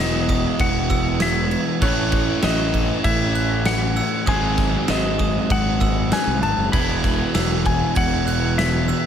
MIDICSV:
0, 0, Header, 1, 8, 480
1, 0, Start_track
1, 0, Key_signature, 4, "major"
1, 0, Tempo, 614754
1, 1423, Time_signature, 4, 2, 24, 8
1, 7076, End_track
2, 0, Start_track
2, 0, Title_t, "Glockenspiel"
2, 0, Program_c, 0, 9
2, 0, Note_on_c, 0, 100, 96
2, 223, Note_on_c, 0, 87, 85
2, 226, Note_off_c, 0, 100, 0
2, 700, Note_on_c, 0, 88, 83
2, 703, Note_off_c, 0, 87, 0
2, 937, Note_on_c, 0, 92, 92
2, 942, Note_off_c, 0, 88, 0
2, 1418, Note_on_c, 0, 90, 101
2, 1419, Note_off_c, 0, 92, 0
2, 1898, Note_on_c, 0, 100, 92
2, 1899, Note_off_c, 0, 90, 0
2, 2376, Note_on_c, 0, 92, 103
2, 2379, Note_off_c, 0, 100, 0
2, 2617, Note_on_c, 0, 90, 89
2, 2618, Note_off_c, 0, 92, 0
2, 3094, Note_on_c, 0, 88, 88
2, 3099, Note_off_c, 0, 90, 0
2, 3328, Note_on_c, 0, 87, 99
2, 3338, Note_off_c, 0, 88, 0
2, 3810, Note_on_c, 0, 100, 93
2, 3814, Note_off_c, 0, 87, 0
2, 4052, Note_on_c, 0, 87, 83
2, 4055, Note_off_c, 0, 100, 0
2, 4531, Note_on_c, 0, 88, 83
2, 4536, Note_off_c, 0, 87, 0
2, 4776, Note_off_c, 0, 88, 0
2, 4776, Note_on_c, 0, 90, 85
2, 5256, Note_on_c, 0, 92, 98
2, 5259, Note_off_c, 0, 90, 0
2, 5734, Note_on_c, 0, 88, 90
2, 5740, Note_off_c, 0, 92, 0
2, 6209, Note_on_c, 0, 92, 98
2, 6219, Note_off_c, 0, 88, 0
2, 6456, Note_on_c, 0, 90, 92
2, 6457, Note_off_c, 0, 92, 0
2, 6935, Note_on_c, 0, 88, 85
2, 6940, Note_off_c, 0, 90, 0
2, 7076, Note_off_c, 0, 88, 0
2, 7076, End_track
3, 0, Start_track
3, 0, Title_t, "Electric slide guitar"
3, 0, Program_c, 1, 29
3, 0, Note_on_c, 1, 75, 87
3, 475, Note_on_c, 1, 78, 98
3, 481, Note_off_c, 1, 75, 0
3, 917, Note_off_c, 1, 78, 0
3, 954, Note_on_c, 1, 76, 94
3, 1283, Note_off_c, 1, 76, 0
3, 1422, Note_on_c, 1, 73, 85
3, 1906, Note_on_c, 1, 75, 95
3, 1916, Note_off_c, 1, 73, 0
3, 2352, Note_off_c, 1, 75, 0
3, 2374, Note_on_c, 1, 76, 101
3, 2857, Note_off_c, 1, 76, 0
3, 2860, Note_on_c, 1, 78, 104
3, 3346, Note_on_c, 1, 80, 98
3, 3355, Note_off_c, 1, 78, 0
3, 3824, Note_on_c, 1, 75, 91
3, 3838, Note_off_c, 1, 80, 0
3, 4307, Note_on_c, 1, 78, 104
3, 4317, Note_off_c, 1, 75, 0
3, 4783, Note_off_c, 1, 78, 0
3, 4786, Note_on_c, 1, 80, 108
3, 5016, Note_off_c, 1, 80, 0
3, 5019, Note_on_c, 1, 81, 103
3, 5244, Note_off_c, 1, 81, 0
3, 5248, Note_on_c, 1, 83, 99
3, 5980, Note_off_c, 1, 83, 0
3, 5983, Note_on_c, 1, 80, 104
3, 6206, Note_off_c, 1, 80, 0
3, 6224, Note_on_c, 1, 78, 112
3, 6673, Note_off_c, 1, 78, 0
3, 6701, Note_on_c, 1, 76, 94
3, 7076, Note_off_c, 1, 76, 0
3, 7076, End_track
4, 0, Start_track
4, 0, Title_t, "Pedal steel guitar"
4, 0, Program_c, 2, 26
4, 0, Note_on_c, 2, 56, 68
4, 0, Note_on_c, 2, 66, 58
4, 0, Note_on_c, 2, 71, 75
4, 1390, Note_off_c, 2, 56, 0
4, 1398, Note_off_c, 2, 71, 0
4, 1423, Note_on_c, 2, 64, 63
4, 1427, Note_on_c, 2, 73, 80
4, 1430, Note_on_c, 2, 57, 68
4, 3322, Note_off_c, 2, 64, 0
4, 3323, Note_off_c, 2, 73, 0
4, 3325, Note_off_c, 2, 57, 0
4, 3340, Note_on_c, 2, 63, 60
4, 3344, Note_on_c, 2, 56, 71
4, 3344, Note_on_c, 2, 72, 74
4, 5230, Note_off_c, 2, 66, 0
4, 5243, Note_off_c, 2, 63, 0
4, 5243, Note_off_c, 2, 72, 0
4, 5258, Note_on_c, 2, 71, 73
4, 5261, Note_on_c, 2, 64, 63
4, 7076, Note_off_c, 2, 56, 0
4, 7076, Note_off_c, 2, 64, 0
4, 7076, Note_off_c, 2, 71, 0
4, 7076, End_track
5, 0, Start_track
5, 0, Title_t, "Overdriven electric guitar"
5, 0, Program_c, 3, 29
5, 0, Note_on_c, 3, 52, 99
5, 0, Note_on_c, 3, 56, 109
5, 0, Note_on_c, 3, 59, 106
5, 0, Note_on_c, 3, 64, 117
5, 1404, Note_off_c, 3, 52, 0
5, 1408, Note_off_c, 3, 56, 0
5, 1412, Note_on_c, 3, 45, 101
5, 1415, Note_off_c, 3, 59, 0
5, 1418, Note_off_c, 3, 64, 0
5, 1421, Note_on_c, 3, 52, 107
5, 1427, Note_on_c, 3, 57, 98
5, 1434, Note_on_c, 3, 61, 107
5, 1441, Note_on_c, 3, 64, 105
5, 3321, Note_off_c, 3, 45, 0
5, 3325, Note_off_c, 3, 52, 0
5, 3328, Note_off_c, 3, 57, 0
5, 3331, Note_on_c, 3, 44, 104
5, 3332, Note_off_c, 3, 61, 0
5, 3335, Note_off_c, 3, 64, 0
5, 3341, Note_on_c, 3, 51, 105
5, 3347, Note_on_c, 3, 54, 99
5, 3356, Note_on_c, 3, 60, 121
5, 3363, Note_on_c, 3, 66, 109
5, 5243, Note_off_c, 3, 44, 0
5, 5247, Note_off_c, 3, 51, 0
5, 5250, Note_off_c, 3, 54, 0
5, 5254, Note_on_c, 3, 52, 98
5, 5255, Note_off_c, 3, 60, 0
5, 5258, Note_off_c, 3, 66, 0
5, 5262, Note_on_c, 3, 56, 106
5, 5274, Note_on_c, 3, 59, 111
5, 5283, Note_on_c, 3, 64, 106
5, 7076, Note_off_c, 3, 52, 0
5, 7076, Note_off_c, 3, 56, 0
5, 7076, Note_off_c, 3, 59, 0
5, 7076, Note_off_c, 3, 64, 0
5, 7076, End_track
6, 0, Start_track
6, 0, Title_t, "Distorted electric guitar"
6, 0, Program_c, 4, 30
6, 0, Note_on_c, 4, 40, 98
6, 0, Note_on_c, 4, 47, 94
6, 1406, Note_off_c, 4, 40, 0
6, 1412, Note_off_c, 4, 47, 0
6, 3347, Note_on_c, 4, 56, 109
6, 5256, Note_on_c, 4, 40, 93
6, 5269, Note_on_c, 4, 47, 93
6, 5276, Note_off_c, 4, 56, 0
6, 7076, Note_off_c, 4, 40, 0
6, 7076, Note_off_c, 4, 47, 0
6, 7076, End_track
7, 0, Start_track
7, 0, Title_t, "Fingered electric bass"
7, 0, Program_c, 5, 33
7, 0, Note_on_c, 5, 28, 96
7, 358, Note_off_c, 5, 28, 0
7, 467, Note_on_c, 5, 28, 92
7, 1206, Note_off_c, 5, 28, 0
7, 1418, Note_on_c, 5, 33, 104
7, 1790, Note_off_c, 5, 33, 0
7, 1900, Note_on_c, 5, 33, 106
7, 2271, Note_off_c, 5, 33, 0
7, 2378, Note_on_c, 5, 33, 95
7, 3121, Note_off_c, 5, 33, 0
7, 3336, Note_on_c, 5, 32, 95
7, 3709, Note_off_c, 5, 32, 0
7, 3820, Note_on_c, 5, 32, 98
7, 4192, Note_off_c, 5, 32, 0
7, 4297, Note_on_c, 5, 32, 94
7, 4763, Note_off_c, 5, 32, 0
7, 4895, Note_on_c, 5, 36, 83
7, 5006, Note_off_c, 5, 36, 0
7, 5018, Note_on_c, 5, 32, 81
7, 5128, Note_off_c, 5, 32, 0
7, 5136, Note_on_c, 5, 30, 88
7, 5247, Note_off_c, 5, 30, 0
7, 5257, Note_on_c, 5, 28, 98
7, 5631, Note_off_c, 5, 28, 0
7, 5741, Note_on_c, 5, 28, 107
7, 6113, Note_off_c, 5, 28, 0
7, 6219, Note_on_c, 5, 28, 94
7, 6963, Note_off_c, 5, 28, 0
7, 7076, End_track
8, 0, Start_track
8, 0, Title_t, "Drums"
8, 227, Note_on_c, 9, 36, 90
8, 228, Note_on_c, 9, 49, 72
8, 305, Note_off_c, 9, 36, 0
8, 306, Note_off_c, 9, 49, 0
8, 463, Note_on_c, 9, 49, 89
8, 465, Note_on_c, 9, 36, 113
8, 541, Note_off_c, 9, 49, 0
8, 543, Note_off_c, 9, 36, 0
8, 704, Note_on_c, 9, 36, 82
8, 705, Note_on_c, 9, 49, 69
8, 782, Note_off_c, 9, 36, 0
8, 783, Note_off_c, 9, 49, 0
8, 938, Note_on_c, 9, 38, 115
8, 938, Note_on_c, 9, 49, 89
8, 1016, Note_off_c, 9, 38, 0
8, 1016, Note_off_c, 9, 49, 0
8, 1179, Note_on_c, 9, 49, 71
8, 1257, Note_off_c, 9, 49, 0
8, 1418, Note_on_c, 9, 49, 94
8, 1420, Note_on_c, 9, 36, 110
8, 1496, Note_off_c, 9, 49, 0
8, 1498, Note_off_c, 9, 36, 0
8, 1654, Note_on_c, 9, 49, 75
8, 1658, Note_on_c, 9, 36, 93
8, 1732, Note_off_c, 9, 49, 0
8, 1736, Note_off_c, 9, 36, 0
8, 1894, Note_on_c, 9, 38, 117
8, 1894, Note_on_c, 9, 49, 103
8, 1973, Note_off_c, 9, 38, 0
8, 1973, Note_off_c, 9, 49, 0
8, 2138, Note_on_c, 9, 36, 85
8, 2140, Note_on_c, 9, 49, 71
8, 2216, Note_off_c, 9, 36, 0
8, 2218, Note_off_c, 9, 49, 0
8, 2375, Note_on_c, 9, 49, 94
8, 2377, Note_on_c, 9, 36, 105
8, 2453, Note_off_c, 9, 49, 0
8, 2455, Note_off_c, 9, 36, 0
8, 2617, Note_on_c, 9, 49, 68
8, 2695, Note_off_c, 9, 49, 0
8, 2854, Note_on_c, 9, 38, 112
8, 2854, Note_on_c, 9, 49, 88
8, 2932, Note_off_c, 9, 38, 0
8, 2932, Note_off_c, 9, 49, 0
8, 3097, Note_on_c, 9, 49, 66
8, 3175, Note_off_c, 9, 49, 0
8, 3335, Note_on_c, 9, 49, 86
8, 3337, Note_on_c, 9, 36, 119
8, 3413, Note_off_c, 9, 49, 0
8, 3415, Note_off_c, 9, 36, 0
8, 3573, Note_on_c, 9, 38, 37
8, 3573, Note_on_c, 9, 49, 65
8, 3575, Note_on_c, 9, 36, 93
8, 3651, Note_off_c, 9, 38, 0
8, 3651, Note_off_c, 9, 49, 0
8, 3653, Note_off_c, 9, 36, 0
8, 3812, Note_on_c, 9, 38, 127
8, 3812, Note_on_c, 9, 49, 84
8, 3890, Note_off_c, 9, 38, 0
8, 3890, Note_off_c, 9, 49, 0
8, 4054, Note_on_c, 9, 49, 62
8, 4056, Note_on_c, 9, 36, 84
8, 4132, Note_off_c, 9, 49, 0
8, 4134, Note_off_c, 9, 36, 0
8, 4297, Note_on_c, 9, 36, 105
8, 4297, Note_on_c, 9, 49, 86
8, 4375, Note_off_c, 9, 36, 0
8, 4375, Note_off_c, 9, 49, 0
8, 4537, Note_on_c, 9, 36, 85
8, 4539, Note_on_c, 9, 49, 69
8, 4615, Note_off_c, 9, 36, 0
8, 4617, Note_off_c, 9, 49, 0
8, 4777, Note_on_c, 9, 38, 113
8, 4777, Note_on_c, 9, 49, 84
8, 4856, Note_off_c, 9, 38, 0
8, 4856, Note_off_c, 9, 49, 0
8, 5018, Note_on_c, 9, 49, 69
8, 5096, Note_off_c, 9, 49, 0
8, 5256, Note_on_c, 9, 49, 95
8, 5257, Note_on_c, 9, 36, 115
8, 5334, Note_off_c, 9, 49, 0
8, 5335, Note_off_c, 9, 36, 0
8, 5496, Note_on_c, 9, 38, 35
8, 5496, Note_on_c, 9, 49, 73
8, 5497, Note_on_c, 9, 36, 95
8, 5574, Note_off_c, 9, 38, 0
8, 5574, Note_off_c, 9, 49, 0
8, 5575, Note_off_c, 9, 36, 0
8, 5737, Note_on_c, 9, 38, 122
8, 5737, Note_on_c, 9, 49, 93
8, 5816, Note_off_c, 9, 38, 0
8, 5816, Note_off_c, 9, 49, 0
8, 5978, Note_on_c, 9, 36, 83
8, 5980, Note_on_c, 9, 49, 74
8, 6056, Note_off_c, 9, 36, 0
8, 6058, Note_off_c, 9, 49, 0
8, 6215, Note_on_c, 9, 49, 86
8, 6218, Note_on_c, 9, 36, 118
8, 6293, Note_off_c, 9, 49, 0
8, 6296, Note_off_c, 9, 36, 0
8, 6461, Note_on_c, 9, 49, 77
8, 6539, Note_off_c, 9, 49, 0
8, 6706, Note_on_c, 9, 38, 110
8, 6706, Note_on_c, 9, 49, 91
8, 6784, Note_off_c, 9, 38, 0
8, 6784, Note_off_c, 9, 49, 0
8, 6941, Note_on_c, 9, 49, 66
8, 7019, Note_off_c, 9, 49, 0
8, 7076, End_track
0, 0, End_of_file